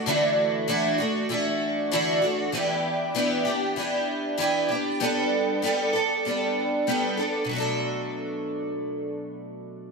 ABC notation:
X:1
M:4/4
L:1/8
Q:"Swing 16ths" 1/4=97
K:Bm
V:1 name="Twelve-string acoustic guitar"
[D,E,A,DF]2 [D,E,A,DF] [A,DF] [E,A,DF]2 [D,E,A,DF] [A,DF] | [E,B,DG]2 [E,B,DG] [B,DG] [E,B,DG]2 [E,B,DG] [B,DG] | [G,B,DA]2 [G,B,DA] [B,DA] [G,B,DA]2 [G,B,DA] [B,DA] | [B,,F,A,DA]8 |]